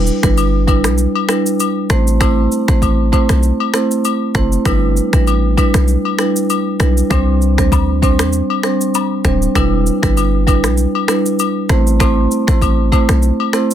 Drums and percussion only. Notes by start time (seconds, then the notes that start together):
0.07 shaker
0.23 finger snap, kick, cross-stick, shaker
0.37 high agogo, shaker
0.68 kick, high agogo, shaker
0.84 finger snap, cross-stick, shaker
0.98 shaker
1.15 high agogo
1.29 finger snap, cross-stick, shaker
1.46 shaker
1.60 high agogo, shaker
1.90 finger snap, cross-stick, shaker
2.07 shaker
2.21 finger snap, kick, cross-stick, high agogo, shaker
2.52 shaker
2.68 finger snap, kick, cross-stick, shaker
2.82 kick, high agogo, shaker
3.13 kick, high agogo, shaker
3.29 finger snap, cross-stick, shaker
3.43 shaker
3.60 high agogo
3.74 finger snap, cross-stick, shaker
3.91 shaker
4.05 high agogo, shaker
4.35 finger snap, kick, cross-stick, shaker
4.52 shaker
4.65 finger snap, kick, cross-stick, high agogo, shaker
4.97 shaker
5.13 finger snap, kick, cross-stick, shaker
5.27 high agogo, shaker
5.58 kick, high agogo, shaker
5.74 finger snap, cross-stick, shaker
5.88 shaker
6.05 high agogo
6.19 finger snap, cross-stick, shaker
6.36 shaker
6.50 high agogo, shaker
6.80 finger snap, cross-stick, shaker
6.97 shaker
7.11 finger snap, kick, cross-stick, high agogo, shaker
7.42 shaker
7.58 finger snap, kick, cross-stick, shaker
7.72 kick, high agogo, low woodblock, shaker
8.03 kick, high agogo, shaker
8.19 finger snap, cross-stick, shaker
8.33 shaker
8.50 high agogo
8.63 finger snap, cross-stick, shaker
8.81 shaker
8.94 high agogo, low woodblock, shaker
9.25 finger snap, kick, cross-stick, shaker
9.42 shaker
9.55 finger snap, kick, cross-stick, high agogo, shaker
9.86 shaker
10.03 finger snap, kick, cross-stick, shaker
10.17 high agogo, shaker
10.47 kick, high agogo, shaker
10.64 finger snap, cross-stick, shaker
10.77 shaker
10.95 high agogo
11.08 finger snap, cross-stick, shaker
11.26 shaker
11.39 high agogo, shaker
11.69 finger snap, cross-stick, shaker
11.87 shaker
12.00 finger snap, kick, cross-stick, high agogo, shaker
12.31 shaker
12.48 finger snap, kick, cross-stick, shaker
12.62 kick, high agogo, shaker
12.92 kick, high agogo, shaker
13.09 finger snap, cross-stick, shaker
13.22 shaker
13.40 high agogo
13.53 finger snap, cross-stick, shaker
13.71 shaker